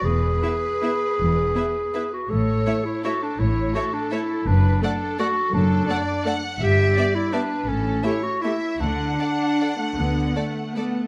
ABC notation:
X:1
M:3/4
L:1/8
Q:1/4=163
K:Dlyd
V:1 name="Violin section"
z2 [Be]2 [Be]2 | z2 [Be]2 [Be]2 | z2 [ce]2 [ce]2 | z2 [ce]2 [ce]2 |
z2 [df]2 [df]2 | z2 [df]2 [df]2 | [K:D] z2 [de]2 [de]2 | z2 [Ae]2 [Ae]2 |
z2 [Ad]2 [Ad]2 | z2 [Ad]2 [Ad]2 |]
V:2 name="Violin section"
B6- | B4- B z | c4 A2 | c2 A4 |
B2 A4 | A2 d2 f2 | [K:D] e2 d2 B2 | A2 c2 e2 |
f6- | f4- f z |]
V:3 name="Clarinet"
G6- | G4- G F | A3 E F D | E2 F D E2 |
D2 D2 F2 | D4- D z | [K:D] G3 E D2 | C2 E F E2 |
D6- | D4 z2 |]
V:4 name="Viola section"
z2 [B,E]2 [B,E]2 | z2 [B,E]2 [B,E]2 | z2 [A,E]2 [A,E]2 | z2 [A,E]2 [A,E]2 |
z2 [A,A]2 [A,A]2 | z2 [A,A]2 [A,A]2 | [K:D] z2 [B,G]2 [B,G]2 | z2 [A,G]2 [A,G]2 |
z2 D3 A, | B,2 A,2 B,2 |]
V:5 name="Cello section" clef=bass
E,,2 z4 | E,,2 z4 | A,,2 z4 | A,,2 z4 |
F,,2 z4 | F,,2 z4 | [K:D] G,,2 z4 | A,,2 z4 |
D,2 z4 | D,2 z2 A,2 |]
V:6 name="Double bass section" clef=bass
E,,,2 z4 | E,,,2 z4 | A,,,2 z4 | A,,,2 z4 |
F,,,2 z4 | F,,,2 z4 | [K:D] G,,,2 z4 | A,,,2 z4 |
D,,2 z4 | D,,2 z4 |]